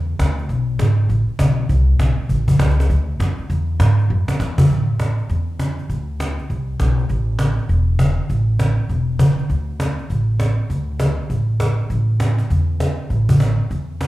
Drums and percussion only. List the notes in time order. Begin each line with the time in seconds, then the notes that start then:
0.19 cajon bass, cajon slap
0.38 cajon slap
0.49 cajon bass, cajon slap
0.79 cajon bass, cajon slap
1.09 cajon bass, cajon slap
1.39 cajon bass, cajon slap
1.69 cajon bass, cajon slap
1.99 cajon bass, cajon slap
2.29 cajon bass, cajon slap
2.48 cajon bass
2.59 cajon bass, cajon slap
2.70 cajon slap
2.80 cajon slap
2.90 cajon bass, cajon slap
3.20 cajon bass, cajon slap
3.38 cajon slap
3.50 cajon bass, cajon slap
3.80 cajon bass, cajon slap
3.99 cajon slap
4.28 cajon slap
4.40 cajon slap
4.58 cajon bass
4.70 cajon bass
4.99 cajon bass, cajon slap
5.18 cajon slap
5.29 cajon bass, cajon slap
5.59 cajon bass, cajon slap
5.79 cajon slap
5.90 cajon bass, cajon slap
6.20 cajon bass, cajon slap
6.38 cajon slap
6.50 cajon bass, cajon slap
6.80 cajon bass, cajon slap
6.98 cajon slap
7.09 cajon bass, cajon slap
7.39 cajon bass, cajon slap
7.58 cajon slap
7.69 cajon bass, cajon slap
7.99 cajon bass, cajon slap
8.29 cajon bass, cajon slap
8.59 cajon bass, cajon slap
8.89 cajon bass, cajon slap
9.19 cajon bass, cajon slap
9.38 cajon slap
9.50 cajon bass, cajon slap
9.80 cajon bass, cajon slap
9.98 cajon slap
10.10 cajon bass, cajon slap
10.40 cajon bass, cajon slap
10.70 cajon bass, cajon slap
10.99 cajon bass, cajon slap
11.30 cajon bass, cajon slap
11.60 cajon bass, cajon slap
11.78 cajon slap
11.90 cajon bass, cajon slap
12.20 cajon bass, cajon slap
12.38 cajon slap
12.50 cajon bass, cajon slap
12.80 cajon bass, cajon slap
13.10 cajon bass, cajon slap
13.29 cajon bass
13.40 cajon bass, cajon slap
13.70 cajon bass, cajon slap
14.01 cajon bass, cajon slap